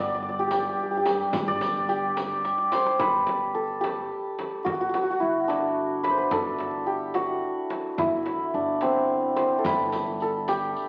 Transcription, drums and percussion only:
0.24 tombak ka soft
0.51 riq soft
0.51 tombak tek medium
0.51 frame drum medium
1.06 riq medium
1.06 tombak tek medium
1.06 frame drum medium
1.33 riq medium
1.33 frame drum loud
1.33 tombak dum medium
1.61 riq soft
1.61 tombak tek medium
1.61 frame drum medium
1.89 riq soft
2.17 riq soft
2.17 tombak tek medium
2.17 frame drum medium
2.45 riq soft
2.45 tombak tek medium
2.58 tombak ka medium
2.72 riq soft
2.72 tombak tek medium
2.72 frame drum medium
2.86 tombak ka medium
2.99 frame drum loud
2.99 tombak dum medium
3.27 tombak tek medium
3.27 frame drum medium
3.56 tombak ka soft
3.84 tombak tek medium
3.84 frame drum medium
4.39 tombak tek medium
4.39 frame drum medium
4.66 frame drum medium
4.66 tombak dum medium
4.94 tombak tek medium
4.94 frame drum medium
5.22 tombak ka soft
5.50 tombak tek medium
5.50 frame drum medium
5.77 tombak ka soft
6.04 tombak tek medium
6.04 frame drum medium
6.31 frame drum medium
6.31 tombak dum medium
6.59 tombak tek medium
6.59 frame drum medium
6.88 tombak ka soft
7.14 tombak tek medium
7.14 frame drum medium
7.43 tombak ka soft
7.70 tombak tek medium
7.70 frame drum medium
7.98 tombak dum medium
7.98 frame drum medium
8.26 tombak tek medium
8.26 frame drum medium
8.54 tombak ka soft
8.81 tombak tek medium
8.81 frame drum medium
9.37 tombak tek medium
9.37 frame drum medium
9.64 riq medium
9.64 tombak dum medium
9.64 frame drum medium
9.92 riq soft
9.92 tombak tek medium
9.92 frame drum medium
10.20 riq soft
10.20 tombak ka soft
10.48 riq soft
10.48 tombak tek medium
10.48 frame drum medium
10.76 riq soft
10.76 tombak ka soft

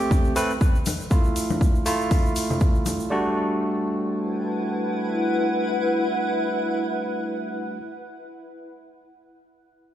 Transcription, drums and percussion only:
0.00 shaker soft
0.11 kick loud
0.11 high conga medium
0.11 shaker soft
0.24 shaker soft
0.36 open hi-hat loud
0.36 shaker medium
0.50 shaker soft
0.61 kick loud
0.61 shaker soft
0.75 shaker soft
0.86 open hi-hat loud
0.86 high conga medium
0.86 shaker medium
1.00 shaker soft
1.11 kick loud
1.11 shaker medium
1.24 shaker soft
1.36 open hi-hat loud
1.36 shaker medium
1.50 high conga medium
1.50 shaker soft
1.61 kick loud
1.61 shaker soft
1.75 shaker soft
1.86 open hi-hat loud
1.86 shaker medium
2.01 shaker soft
2.11 kick loud
2.11 open hi-hat medium
2.11 high conga medium
2.11 shaker medium
2.25 shaker soft
2.36 open hi-hat loud
2.36 shaker medium
2.50 low conga medium
2.50 shaker soft
2.60 kick loud
2.60 shaker soft
2.75 shaker soft
2.86 open hi-hat loud
2.86 high conga medium
2.86 shaker medium
3.00 shaker soft

